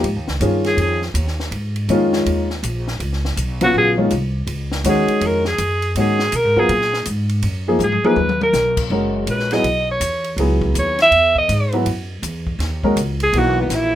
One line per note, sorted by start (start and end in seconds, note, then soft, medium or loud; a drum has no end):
0.03 0.16 G#2 medium
0.03 ride medium
0.16 0.27 D#2 medium
0.28 0.40 C#2 medium
0.28 snare medium
0.40 0.76 G2 medium
0.40 0.97 D#3 medium
0.40 0.97 C#4 medium
0.40 0.98 F4 medium
0.40 0.97 G#4 medium
0.40 hi-hat pedal medium
0.40 ride medium
0.64 0.78 G#4 medium
0.64 snare soft
0.64 ride soft
0.77 1.14 F2 medium
0.77 ride medium
0.81 1.02 G#4 medium
1.02 snare soft
1.14 1.51 D#2 medium
1.14 hi-hat pedal medium
1.14 ride medium
1.27 snare soft
1.40 snare soft
1.51 1.88 G#2 medium
1.51 ride medium
1.76 ride soft
1.89 2.25 F2 medium
1.89 2.46 D#3 medium
1.89 2.46 G#3 medium
1.89 2.46 C#4 medium
1.89 2.46 F4 medium
1.89 hi-hat pedal soft
1.89 ride medium
2.13 snare medium
2.26 2.62 D#2 medium
2.26 ride medium
2.50 snare soft
2.63 2.99 A#1 medium
2.63 hi-hat pedal medium
2.63 ride medium
2.88 snare soft
3.00 3.36 C#2 medium
3.00 ride medium
3.13 snare soft
3.25 snare medium
3.37 3.73 B1 medium
3.37 hi-hat pedal medium
3.37 ride medium
3.61 3.96 C#3 medium
3.61 3.96 F#3 medium
3.61 3.96 B3 medium
3.61 3.96 F4 medium
3.61 3.75 F#4 loud
3.61 ride medium
3.74 4.10 A#1 medium
3.74 3.91 G#4 medium
3.98 4.10 D#3 medium
3.98 4.10 G#3 medium
3.98 4.10 C#4 medium
3.98 4.10 F4 medium
4.10 4.46 C2 medium
4.10 hi-hat pedal medium
4.10 ride medium
4.47 4.83 C#2 medium
4.47 ride medium
4.72 snare medium
4.84 5.06 D#2 medium
4.84 5.41 D#3 medium
4.84 5.41 G#3 medium
4.84 5.41 C#4 medium
4.84 5.41 F#4 medium
4.84 hi-hat pedal medium
4.84 ride medium
4.89 5.27 G#4 medium
5.08 muted upright bass stroke soft
5.08 ride soft
5.21 5.57 F2 medium
5.21 ride medium
5.26 5.46 A#4 loud
5.45 5.93 G#4 medium
5.45 snare medium
5.58 5.94 F#2 medium
5.58 hi-hat pedal medium
5.58 ride medium
5.82 ride medium
5.95 6.31 G#2 medium
5.95 6.17 D#3 medium
5.95 6.17 G#3 medium
5.95 6.17 C#4 medium
5.95 6.17 F#4 medium
5.95 ride medium
6.00 6.37 G#4 medium
6.19 snare medium
6.32 6.45 B2 medium
6.32 6.60 A#4 loud
6.32 hi-hat pedal medium
6.32 ride medium
6.45 6.56 G#2 medium
6.56 6.68 F#2 medium
6.56 6.68 F#3 medium
6.56 6.68 B3 medium
6.56 6.68 F4 medium
6.56 7.08 G#4 loud
6.56 6.68 A#4 medium
6.69 7.05 A#2 medium
6.69 ride medium
6.81 snare soft
6.93 snare soft
7.05 7.42 G#2 medium
7.05 hi-hat pedal medium
7.05 ride medium
7.29 ride medium
7.42 7.78 F#2 medium
7.42 ride medium
7.68 7.79 F3 medium
7.68 7.79 A#3 medium
7.68 7.79 D#4 medium
7.68 7.79 G#4 medium
7.79 8.01 G#2 medium
7.79 hi-hat pedal medium
7.79 mid tom medium
7.84 8.08 G#4 medium
7.92 mid tom medium
8.02 8.16 F3 medium
8.02 8.16 A#3 medium
8.02 8.16 D#4 medium
8.02 8.16 G#4 medium
8.02 8.42 B4 loud
8.02 muted upright bass stroke soft
8.02 mid tom medium
8.16 8.52 D#2 medium
8.16 mid tom medium
8.29 mid tom medium
8.41 8.88 A#4 medium
8.41 mid tom medium
8.53 8.89 B1 loud
8.53 snare medium
8.53 hi-hat pedal medium
8.77 kick medium
8.77 crash medium
8.90 9.26 F#1 medium
8.90 9.47 G#3 medium
8.90 9.47 C#4 medium
8.90 9.47 F#4 medium
8.90 9.47 A#4 medium
9.27 9.62 A#1 medium
9.27 9.55 B4 medium
9.27 hi-hat pedal medium
9.27 ride medium
9.39 snare soft
9.51 9.63 F#3 medium
9.51 9.63 B3 medium
9.51 9.63 E4 medium
9.51 9.64 G#4 medium
9.51 9.89 D#5 loud
9.51 snare soft
9.51 ride soft
9.63 9.99 B1 medium
9.63 ride medium
9.91 10.36 C#5 medium
10.00 10.36 E2 medium
10.00 hi-hat pedal medium
10.00 ride medium
10.24 ride soft
10.37 10.73 C#2 medium
10.37 10.94 F#3 medium
10.37 10.94 B3 medium
10.37 10.95 E4 medium
10.37 10.95 G#4 medium
10.37 ride medium
10.62 kick medium
10.74 11.10 D#2 medium
10.74 hi-hat pedal medium
10.74 ride medium
10.79 10.99 C#5 medium
10.99 11.35 E5 loud
10.99 snare soft
10.99 ride soft
11.11 11.47 E2 medium
11.11 ride medium
11.36 11.77 D#5 medium
11.36 kick medium
11.49 11.85 G#2 loud
11.49 hi-hat pedal medium
11.49 ride medium
11.72 11.85 F#3 medium
11.72 11.85 B3 medium
11.72 11.85 E4 medium
11.72 11.85 F#4 medium
11.72 ride soft
11.86 12.22 F#2 medium
11.86 ride medium
12.22 12.58 E2 medium
12.22 hi-hat pedal medium
12.22 ride medium
12.47 kick medium
12.59 12.95 D#2 medium
12.59 snare soft
12.59 ride medium
12.84 12.96 G#3 medium
12.84 12.96 C#4 medium
12.84 12.96 F#4 medium
12.84 12.96 A#4 medium
12.84 kick medium
12.96 13.32 C#2 medium
12.96 hi-hat pedal medium
12.96 ride medium
13.20 13.40 G#4 loud
13.20 ride medium
13.33 13.69 B1 medium
13.33 13.90 E3 medium
13.33 13.90 A#3 medium
13.33 13.90 D#4 medium
13.33 13.90 F#4 medium
13.33 ride medium
13.38 13.60 F#4 medium
13.61 13.77 B3 medium
13.69 13.95 A#1 medium
13.69 snare soft
13.69 hi-hat pedal medium
13.69 ride medium
13.75 13.95 E4 medium